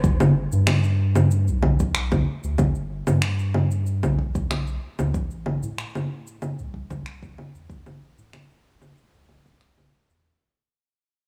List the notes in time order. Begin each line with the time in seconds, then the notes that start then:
0.04 G1, kick, shaker
0.20 low conga, shaker
0.52 G2, shaker
0.67 finger snap, low conga, shaker
0.84 shaker
1.15 low conga, shaker
1.31 shaker
1.48 B1, shaker
1.63 kick, low conga
1.79 kick, shaker
1.95 finger snap, shaker
2.12 kick, low conga, shaker
2.44 D2, shaker
2.58 G1, kick, low conga, shaker
2.75 shaker
3.07 G2, low conga, shaker
3.22 finger snap, shaker
3.39 shaker
3.54 low conga
3.71 shaker
3.86 shaker
4.03 B1, low conga, shaker
4.19 kick
4.35 kick, shaker
4.51 finger snap, low conga, shaker
4.67 shaker
4.99 D2, low conga, shaker
5.14 A1, kick, shaker
5.31 shaker
5.46 low conga
5.63 A2, shaker
5.78 finger snap, shaker
5.95 low conga, shaker
6.27 shaker
6.42 low conga, shaker
6.59 C2, shaker
6.74 kick
6.90 kick, low conga, shaker
7.06 finger snap, shaker
7.23 kick, shaker
7.38 low conga
7.55 E2, shaker
7.70 A1, kick, shaker
7.86 low conga, shaker
8.18 A2, shaker
8.33 finger snap, low conga, shaker
8.50 shaker
8.82 low conga, shaker
8.97 shaker
9.14 C2, shaker
9.29 kick, low conga
9.46 kick, shaker
9.61 finger snap, shaker
9.78 low conga, shaker
10.10 E2, shaker